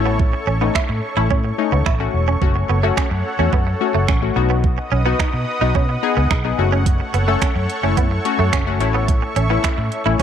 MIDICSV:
0, 0, Header, 1, 8, 480
1, 0, Start_track
1, 0, Tempo, 555556
1, 168, Time_signature, 4, 2, 24, 8
1, 8835, End_track
2, 0, Start_track
2, 0, Title_t, "Supersaw synth"
2, 0, Program_c, 0, 81
2, 0, Note_on_c, 0, 69, 75
2, 0, Note_on_c, 0, 73, 71
2, 0, Note_on_c, 0, 85, 86
2, 2054, Note_off_c, 0, 69, 0
2, 2054, Note_off_c, 0, 73, 0
2, 2089, Note_on_c, 0, 69, 76
2, 2089, Note_on_c, 0, 73, 70
2, 2089, Note_on_c, 0, 78, 72
2, 3734, Note_off_c, 0, 85, 0
2, 3752, Note_off_c, 0, 69, 0
2, 3752, Note_off_c, 0, 73, 0
2, 3752, Note_off_c, 0, 78, 0
2, 3768, Note_on_c, 0, 71, 77
2, 3768, Note_on_c, 0, 75, 72
2, 3768, Note_on_c, 0, 78, 70
2, 3768, Note_on_c, 0, 87, 84
2, 5669, Note_off_c, 0, 71, 0
2, 5669, Note_off_c, 0, 75, 0
2, 5669, Note_off_c, 0, 87, 0
2, 5689, Note_on_c, 0, 85, 82
2, 5690, Note_on_c, 0, 69, 80
2, 5690, Note_on_c, 0, 73, 70
2, 7574, Note_off_c, 0, 78, 0
2, 7590, Note_off_c, 0, 85, 0
2, 7609, Note_on_c, 0, 76, 72
2, 7609, Note_on_c, 0, 85, 83
2, 8778, Note_off_c, 0, 69, 0
2, 8778, Note_off_c, 0, 73, 0
2, 8797, Note_off_c, 0, 76, 0
2, 8797, Note_off_c, 0, 85, 0
2, 8809, Note_on_c, 0, 75, 67
2, 8809, Note_on_c, 0, 83, 80
2, 8835, Note_off_c, 0, 75, 0
2, 8835, Note_off_c, 0, 83, 0
2, 8835, End_track
3, 0, Start_track
3, 0, Title_t, "Clean electric guitar"
3, 0, Program_c, 1, 27
3, 48, Note_on_c, 1, 59, 67
3, 129, Note_off_c, 1, 59, 0
3, 408, Note_on_c, 1, 61, 78
3, 489, Note_off_c, 1, 61, 0
3, 529, Note_on_c, 1, 59, 77
3, 609, Note_off_c, 1, 59, 0
3, 649, Note_on_c, 1, 64, 78
3, 729, Note_off_c, 1, 64, 0
3, 1009, Note_on_c, 1, 64, 77
3, 1089, Note_off_c, 1, 64, 0
3, 1128, Note_on_c, 1, 61, 74
3, 1209, Note_off_c, 1, 61, 0
3, 1489, Note_on_c, 1, 59, 73
3, 1569, Note_off_c, 1, 59, 0
3, 1608, Note_on_c, 1, 64, 77
3, 1689, Note_off_c, 1, 64, 0
3, 1968, Note_on_c, 1, 61, 76
3, 2049, Note_off_c, 1, 61, 0
3, 2328, Note_on_c, 1, 59, 73
3, 2409, Note_off_c, 1, 59, 0
3, 2448, Note_on_c, 1, 57, 74
3, 2529, Note_off_c, 1, 57, 0
3, 2569, Note_on_c, 1, 61, 81
3, 2649, Note_off_c, 1, 61, 0
3, 2929, Note_on_c, 1, 61, 71
3, 3010, Note_off_c, 1, 61, 0
3, 3049, Note_on_c, 1, 59, 71
3, 3129, Note_off_c, 1, 59, 0
3, 3408, Note_on_c, 1, 57, 66
3, 3489, Note_off_c, 1, 57, 0
3, 3529, Note_on_c, 1, 61, 79
3, 3609, Note_off_c, 1, 61, 0
3, 3888, Note_on_c, 1, 59, 71
3, 3969, Note_off_c, 1, 59, 0
3, 4248, Note_on_c, 1, 61, 79
3, 4329, Note_off_c, 1, 61, 0
3, 4368, Note_on_c, 1, 59, 79
3, 4449, Note_off_c, 1, 59, 0
3, 4489, Note_on_c, 1, 63, 83
3, 4569, Note_off_c, 1, 63, 0
3, 4849, Note_on_c, 1, 63, 77
3, 4930, Note_off_c, 1, 63, 0
3, 4969, Note_on_c, 1, 61, 80
3, 5050, Note_off_c, 1, 61, 0
3, 5329, Note_on_c, 1, 59, 72
3, 5410, Note_off_c, 1, 59, 0
3, 5450, Note_on_c, 1, 63, 80
3, 5530, Note_off_c, 1, 63, 0
3, 5810, Note_on_c, 1, 61, 76
3, 5890, Note_off_c, 1, 61, 0
3, 6169, Note_on_c, 1, 59, 72
3, 6250, Note_off_c, 1, 59, 0
3, 6290, Note_on_c, 1, 57, 75
3, 6370, Note_off_c, 1, 57, 0
3, 6409, Note_on_c, 1, 61, 77
3, 6489, Note_off_c, 1, 61, 0
3, 6769, Note_on_c, 1, 61, 70
3, 6849, Note_off_c, 1, 61, 0
3, 6889, Note_on_c, 1, 59, 73
3, 6969, Note_off_c, 1, 59, 0
3, 7249, Note_on_c, 1, 57, 70
3, 7330, Note_off_c, 1, 57, 0
3, 7370, Note_on_c, 1, 61, 76
3, 7450, Note_off_c, 1, 61, 0
3, 7728, Note_on_c, 1, 59, 68
3, 7809, Note_off_c, 1, 59, 0
3, 8089, Note_on_c, 1, 61, 74
3, 8170, Note_off_c, 1, 61, 0
3, 8209, Note_on_c, 1, 59, 83
3, 8289, Note_off_c, 1, 59, 0
3, 8329, Note_on_c, 1, 64, 80
3, 8409, Note_off_c, 1, 64, 0
3, 8690, Note_on_c, 1, 64, 79
3, 8770, Note_off_c, 1, 64, 0
3, 8809, Note_on_c, 1, 61, 74
3, 8835, Note_off_c, 1, 61, 0
3, 8835, End_track
4, 0, Start_track
4, 0, Title_t, "Synth pluck"
4, 0, Program_c, 2, 84
4, 0, Note_on_c, 2, 57, 88
4, 0, Note_on_c, 2, 61, 85
4, 0, Note_on_c, 2, 64, 105
4, 407, Note_off_c, 2, 57, 0
4, 409, Note_off_c, 2, 61, 0
4, 410, Note_off_c, 2, 64, 0
4, 527, Note_on_c, 2, 57, 87
4, 529, Note_on_c, 2, 61, 81
4, 531, Note_on_c, 2, 63, 92
4, 865, Note_off_c, 2, 57, 0
4, 866, Note_off_c, 2, 61, 0
4, 867, Note_off_c, 2, 63, 0
4, 1007, Note_on_c, 2, 57, 88
4, 1009, Note_on_c, 2, 61, 75
4, 1011, Note_on_c, 2, 64, 93
4, 1261, Note_off_c, 2, 57, 0
4, 1261, Note_off_c, 2, 61, 0
4, 1263, Note_off_c, 2, 64, 0
4, 1366, Note_on_c, 2, 57, 90
4, 1369, Note_on_c, 2, 61, 81
4, 1370, Note_on_c, 2, 63, 97
4, 1620, Note_off_c, 2, 57, 0
4, 1622, Note_off_c, 2, 61, 0
4, 1622, Note_off_c, 2, 63, 0
4, 1726, Note_on_c, 2, 57, 82
4, 1729, Note_on_c, 2, 61, 77
4, 1730, Note_on_c, 2, 66, 89
4, 1980, Note_off_c, 2, 57, 0
4, 1981, Note_off_c, 2, 61, 0
4, 1982, Note_off_c, 2, 66, 0
4, 2086, Note_on_c, 2, 57, 88
4, 2089, Note_on_c, 2, 61, 77
4, 2091, Note_on_c, 2, 66, 93
4, 2340, Note_off_c, 2, 57, 0
4, 2342, Note_off_c, 2, 61, 0
4, 2343, Note_off_c, 2, 66, 0
4, 2446, Note_on_c, 2, 57, 88
4, 2449, Note_on_c, 2, 61, 82
4, 2451, Note_on_c, 2, 66, 95
4, 2785, Note_off_c, 2, 57, 0
4, 2786, Note_off_c, 2, 61, 0
4, 2787, Note_off_c, 2, 66, 0
4, 2927, Note_on_c, 2, 57, 86
4, 2929, Note_on_c, 2, 61, 75
4, 2931, Note_on_c, 2, 66, 89
4, 3181, Note_off_c, 2, 57, 0
4, 3182, Note_off_c, 2, 61, 0
4, 3183, Note_off_c, 2, 66, 0
4, 3287, Note_on_c, 2, 57, 86
4, 3290, Note_on_c, 2, 61, 79
4, 3292, Note_on_c, 2, 66, 95
4, 3541, Note_off_c, 2, 57, 0
4, 3542, Note_off_c, 2, 61, 0
4, 3543, Note_off_c, 2, 66, 0
4, 3647, Note_on_c, 2, 57, 84
4, 3649, Note_on_c, 2, 61, 80
4, 3651, Note_on_c, 2, 66, 92
4, 3760, Note_off_c, 2, 66, 0
4, 3766, Note_on_c, 2, 59, 92
4, 3768, Note_off_c, 2, 57, 0
4, 3768, Note_on_c, 2, 63, 84
4, 3769, Note_off_c, 2, 61, 0
4, 3770, Note_on_c, 2, 66, 99
4, 4247, Note_off_c, 2, 59, 0
4, 4248, Note_off_c, 2, 63, 0
4, 4249, Note_off_c, 2, 66, 0
4, 4367, Note_on_c, 2, 59, 87
4, 4369, Note_on_c, 2, 63, 84
4, 4371, Note_on_c, 2, 66, 93
4, 4705, Note_off_c, 2, 59, 0
4, 4706, Note_off_c, 2, 63, 0
4, 4707, Note_off_c, 2, 66, 0
4, 4847, Note_on_c, 2, 59, 89
4, 4849, Note_on_c, 2, 63, 76
4, 4851, Note_on_c, 2, 66, 90
4, 5101, Note_off_c, 2, 59, 0
4, 5102, Note_off_c, 2, 63, 0
4, 5103, Note_off_c, 2, 66, 0
4, 5207, Note_on_c, 2, 59, 90
4, 5209, Note_on_c, 2, 63, 79
4, 5211, Note_on_c, 2, 68, 98
4, 5461, Note_off_c, 2, 59, 0
4, 5462, Note_off_c, 2, 63, 0
4, 5463, Note_off_c, 2, 68, 0
4, 5567, Note_on_c, 2, 59, 86
4, 5569, Note_on_c, 2, 63, 75
4, 5572, Note_on_c, 2, 68, 92
4, 5687, Note_on_c, 2, 57, 97
4, 5688, Note_off_c, 2, 59, 0
4, 5689, Note_off_c, 2, 63, 0
4, 5689, Note_on_c, 2, 61, 83
4, 5690, Note_off_c, 2, 68, 0
4, 5692, Note_on_c, 2, 66, 101
4, 6168, Note_off_c, 2, 57, 0
4, 6169, Note_off_c, 2, 61, 0
4, 6170, Note_off_c, 2, 66, 0
4, 6287, Note_on_c, 2, 57, 91
4, 6289, Note_on_c, 2, 61, 79
4, 6291, Note_on_c, 2, 69, 97
4, 6625, Note_off_c, 2, 57, 0
4, 6626, Note_off_c, 2, 61, 0
4, 6627, Note_off_c, 2, 69, 0
4, 6767, Note_on_c, 2, 57, 84
4, 6769, Note_on_c, 2, 61, 76
4, 6771, Note_on_c, 2, 64, 93
4, 7021, Note_off_c, 2, 57, 0
4, 7022, Note_off_c, 2, 61, 0
4, 7023, Note_off_c, 2, 64, 0
4, 7127, Note_on_c, 2, 57, 88
4, 7129, Note_on_c, 2, 61, 82
4, 7132, Note_on_c, 2, 66, 96
4, 7381, Note_off_c, 2, 57, 0
4, 7382, Note_off_c, 2, 61, 0
4, 7383, Note_off_c, 2, 66, 0
4, 7487, Note_on_c, 2, 57, 81
4, 7489, Note_on_c, 2, 61, 77
4, 7492, Note_on_c, 2, 66, 94
4, 7596, Note_off_c, 2, 57, 0
4, 7598, Note_off_c, 2, 61, 0
4, 7607, Note_on_c, 2, 57, 96
4, 7609, Note_on_c, 2, 61, 82
4, 7610, Note_off_c, 2, 66, 0
4, 7611, Note_on_c, 2, 64, 102
4, 8088, Note_off_c, 2, 57, 0
4, 8089, Note_off_c, 2, 61, 0
4, 8090, Note_off_c, 2, 64, 0
4, 8207, Note_on_c, 2, 57, 87
4, 8209, Note_on_c, 2, 61, 82
4, 8211, Note_on_c, 2, 64, 94
4, 8545, Note_off_c, 2, 57, 0
4, 8546, Note_off_c, 2, 61, 0
4, 8547, Note_off_c, 2, 64, 0
4, 8687, Note_on_c, 2, 57, 85
4, 8690, Note_on_c, 2, 61, 76
4, 8691, Note_on_c, 2, 64, 92
4, 8807, Note_on_c, 2, 59, 94
4, 8808, Note_off_c, 2, 57, 0
4, 8809, Note_off_c, 2, 61, 0
4, 8809, Note_on_c, 2, 63, 84
4, 8810, Note_off_c, 2, 64, 0
4, 8835, Note_off_c, 2, 59, 0
4, 8835, Note_off_c, 2, 63, 0
4, 8835, End_track
5, 0, Start_track
5, 0, Title_t, "Fingered electric bass"
5, 0, Program_c, 3, 33
5, 0, Note_on_c, 3, 33, 99
5, 278, Note_off_c, 3, 33, 0
5, 408, Note_on_c, 3, 33, 102
5, 583, Note_off_c, 3, 33, 0
5, 769, Note_on_c, 3, 45, 94
5, 857, Note_off_c, 3, 45, 0
5, 1009, Note_on_c, 3, 33, 89
5, 1096, Note_off_c, 3, 33, 0
5, 1128, Note_on_c, 3, 45, 104
5, 1303, Note_off_c, 3, 45, 0
5, 1489, Note_on_c, 3, 37, 82
5, 1576, Note_off_c, 3, 37, 0
5, 1848, Note_on_c, 3, 28, 93
5, 2023, Note_off_c, 3, 28, 0
5, 2088, Note_on_c, 3, 30, 105
5, 2263, Note_off_c, 3, 30, 0
5, 2328, Note_on_c, 3, 30, 91
5, 2503, Note_off_c, 3, 30, 0
5, 2689, Note_on_c, 3, 42, 95
5, 2776, Note_off_c, 3, 42, 0
5, 2928, Note_on_c, 3, 40, 91
5, 3016, Note_off_c, 3, 40, 0
5, 3048, Note_on_c, 3, 42, 100
5, 3223, Note_off_c, 3, 42, 0
5, 3408, Note_on_c, 3, 30, 79
5, 3496, Note_off_c, 3, 30, 0
5, 3529, Note_on_c, 3, 33, 94
5, 3704, Note_off_c, 3, 33, 0
5, 3768, Note_on_c, 3, 35, 94
5, 4118, Note_off_c, 3, 35, 0
5, 4249, Note_on_c, 3, 35, 94
5, 4424, Note_off_c, 3, 35, 0
5, 4609, Note_on_c, 3, 47, 98
5, 4697, Note_off_c, 3, 47, 0
5, 4849, Note_on_c, 3, 35, 95
5, 4936, Note_off_c, 3, 35, 0
5, 4968, Note_on_c, 3, 47, 100
5, 5143, Note_off_c, 3, 47, 0
5, 5329, Note_on_c, 3, 37, 92
5, 5417, Note_off_c, 3, 37, 0
5, 5449, Note_on_c, 3, 35, 99
5, 5624, Note_off_c, 3, 35, 0
5, 5689, Note_on_c, 3, 30, 99
5, 6038, Note_off_c, 3, 30, 0
5, 6169, Note_on_c, 3, 30, 92
5, 6344, Note_off_c, 3, 30, 0
5, 6528, Note_on_c, 3, 42, 106
5, 6616, Note_off_c, 3, 42, 0
5, 6768, Note_on_c, 3, 30, 97
5, 6856, Note_off_c, 3, 30, 0
5, 6888, Note_on_c, 3, 42, 97
5, 7063, Note_off_c, 3, 42, 0
5, 7249, Note_on_c, 3, 42, 82
5, 7336, Note_off_c, 3, 42, 0
5, 7369, Note_on_c, 3, 30, 84
5, 7609, Note_off_c, 3, 30, 0
5, 7609, Note_on_c, 3, 33, 95
5, 7958, Note_off_c, 3, 33, 0
5, 8089, Note_on_c, 3, 33, 92
5, 8264, Note_off_c, 3, 33, 0
5, 8449, Note_on_c, 3, 45, 93
5, 8537, Note_off_c, 3, 45, 0
5, 8690, Note_on_c, 3, 33, 85
5, 8777, Note_off_c, 3, 33, 0
5, 8808, Note_on_c, 3, 35, 96
5, 8835, Note_off_c, 3, 35, 0
5, 8835, End_track
6, 0, Start_track
6, 0, Title_t, "Muted clean electric guitar strokes"
6, 289, Note_on_c, 9, 29, 45
6, 375, Note_off_c, 9, 29, 0
6, 769, Note_on_c, 9, 29, 44
6, 855, Note_off_c, 9, 29, 0
6, 1249, Note_on_c, 9, 29, 41
6, 1335, Note_off_c, 9, 29, 0
6, 1729, Note_on_c, 9, 29, 45
6, 1815, Note_off_c, 9, 29, 0
6, 2209, Note_on_c, 9, 29, 44
6, 2295, Note_off_c, 9, 29, 0
6, 2689, Note_on_c, 9, 29, 45
6, 2776, Note_off_c, 9, 29, 0
6, 3169, Note_on_c, 9, 29, 41
6, 3255, Note_off_c, 9, 29, 0
6, 3768, Note_on_c, 9, 29, 43
6, 3855, Note_off_c, 9, 29, 0
6, 4129, Note_on_c, 9, 29, 44
6, 4215, Note_off_c, 9, 29, 0
6, 4609, Note_on_c, 9, 29, 45
6, 4696, Note_off_c, 9, 29, 0
6, 5090, Note_on_c, 9, 29, 42
6, 5176, Note_off_c, 9, 29, 0
6, 5570, Note_on_c, 9, 29, 46
6, 5656, Note_off_c, 9, 29, 0
6, 6050, Note_on_c, 9, 29, 45
6, 6136, Note_off_c, 9, 29, 0
6, 6529, Note_on_c, 9, 29, 43
6, 6615, Note_off_c, 9, 29, 0
6, 7009, Note_on_c, 9, 29, 41
6, 7095, Note_off_c, 9, 29, 0
6, 7609, Note_on_c, 9, 29, 43
6, 7696, Note_off_c, 9, 29, 0
6, 7969, Note_on_c, 9, 29, 45
6, 8056, Note_off_c, 9, 29, 0
6, 8449, Note_on_c, 9, 29, 45
6, 8536, Note_off_c, 9, 29, 0
6, 8835, End_track
7, 0, Start_track
7, 0, Title_t, "Muted fingered electric bass strokes"
7, 2568, Note_on_c, 9, 29, 44
7, 2655, Note_off_c, 9, 29, 0
7, 4489, Note_on_c, 9, 29, 47
7, 4575, Note_off_c, 9, 29, 0
7, 8329, Note_on_c, 9, 29, 45
7, 8415, Note_off_c, 9, 29, 0
7, 8835, End_track
8, 0, Start_track
8, 0, Title_t, "Drums"
8, 168, Note_on_c, 9, 36, 114
8, 255, Note_off_c, 9, 36, 0
8, 649, Note_on_c, 9, 36, 105
8, 652, Note_on_c, 9, 26, 106
8, 735, Note_off_c, 9, 36, 0
8, 738, Note_off_c, 9, 26, 0
8, 1128, Note_on_c, 9, 36, 103
8, 1214, Note_off_c, 9, 36, 0
8, 1609, Note_on_c, 9, 26, 98
8, 1609, Note_on_c, 9, 36, 111
8, 1695, Note_off_c, 9, 26, 0
8, 1695, Note_off_c, 9, 36, 0
8, 2088, Note_on_c, 9, 36, 111
8, 2174, Note_off_c, 9, 36, 0
8, 2568, Note_on_c, 9, 36, 106
8, 2571, Note_on_c, 9, 26, 112
8, 2655, Note_off_c, 9, 36, 0
8, 2657, Note_off_c, 9, 26, 0
8, 3047, Note_on_c, 9, 36, 104
8, 3134, Note_off_c, 9, 36, 0
8, 3529, Note_on_c, 9, 26, 95
8, 3529, Note_on_c, 9, 36, 116
8, 3615, Note_off_c, 9, 26, 0
8, 3615, Note_off_c, 9, 36, 0
8, 4008, Note_on_c, 9, 36, 114
8, 4094, Note_off_c, 9, 36, 0
8, 4488, Note_on_c, 9, 36, 108
8, 4491, Note_on_c, 9, 26, 109
8, 4575, Note_off_c, 9, 36, 0
8, 4578, Note_off_c, 9, 26, 0
8, 4968, Note_on_c, 9, 36, 104
8, 5054, Note_off_c, 9, 36, 0
8, 5449, Note_on_c, 9, 26, 101
8, 5449, Note_on_c, 9, 36, 111
8, 5535, Note_off_c, 9, 26, 0
8, 5535, Note_off_c, 9, 36, 0
8, 5928, Note_on_c, 9, 36, 110
8, 5929, Note_on_c, 9, 42, 73
8, 6014, Note_off_c, 9, 36, 0
8, 6015, Note_off_c, 9, 42, 0
8, 6169, Note_on_c, 9, 42, 57
8, 6255, Note_off_c, 9, 42, 0
8, 6408, Note_on_c, 9, 36, 109
8, 6408, Note_on_c, 9, 42, 69
8, 6411, Note_on_c, 9, 26, 105
8, 6494, Note_off_c, 9, 42, 0
8, 6495, Note_off_c, 9, 36, 0
8, 6498, Note_off_c, 9, 26, 0
8, 6649, Note_on_c, 9, 42, 50
8, 6735, Note_off_c, 9, 42, 0
8, 6888, Note_on_c, 9, 36, 104
8, 6889, Note_on_c, 9, 42, 69
8, 6974, Note_off_c, 9, 36, 0
8, 6975, Note_off_c, 9, 42, 0
8, 7130, Note_on_c, 9, 42, 48
8, 7216, Note_off_c, 9, 42, 0
8, 7369, Note_on_c, 9, 26, 102
8, 7369, Note_on_c, 9, 36, 111
8, 7369, Note_on_c, 9, 42, 71
8, 7455, Note_off_c, 9, 26, 0
8, 7455, Note_off_c, 9, 36, 0
8, 7456, Note_off_c, 9, 42, 0
8, 7607, Note_on_c, 9, 42, 54
8, 7694, Note_off_c, 9, 42, 0
8, 7848, Note_on_c, 9, 36, 115
8, 7849, Note_on_c, 9, 42, 78
8, 7935, Note_off_c, 9, 36, 0
8, 7935, Note_off_c, 9, 42, 0
8, 8089, Note_on_c, 9, 42, 61
8, 8175, Note_off_c, 9, 42, 0
8, 8328, Note_on_c, 9, 42, 71
8, 8329, Note_on_c, 9, 36, 102
8, 8332, Note_on_c, 9, 26, 106
8, 8414, Note_off_c, 9, 42, 0
8, 8415, Note_off_c, 9, 36, 0
8, 8418, Note_off_c, 9, 26, 0
8, 8569, Note_on_c, 9, 42, 49
8, 8656, Note_off_c, 9, 42, 0
8, 8808, Note_on_c, 9, 36, 107
8, 8809, Note_on_c, 9, 42, 68
8, 8835, Note_off_c, 9, 36, 0
8, 8835, Note_off_c, 9, 42, 0
8, 8835, End_track
0, 0, End_of_file